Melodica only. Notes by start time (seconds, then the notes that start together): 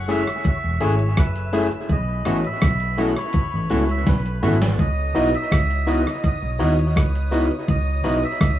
Already playing: F#5
0.11 E5
0.48 E5
0.83 C#5
1.19 B4
1.92 D#5
2.46 E5
3.00 D#5
3.18 C#5
3.91 E5
4.08 B4
4.73 D5
4.80 D#5
5.35 E5
5.89 D#5
6.26 D#5
6.62 C#5
6.98 B4
7.70 D#5
8.24 E5